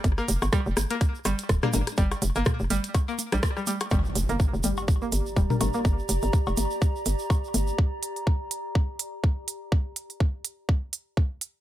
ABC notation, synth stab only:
X:1
M:4/4
L:1/16
Q:"Swing 16ths" 1/4=124
K:Gm
V:1 name="Synth stab"
z12 z [G,DB] [G,DB] z | z16 | z12 z [G,DB] [G,DB] z | z16 |
z16 | z16 |]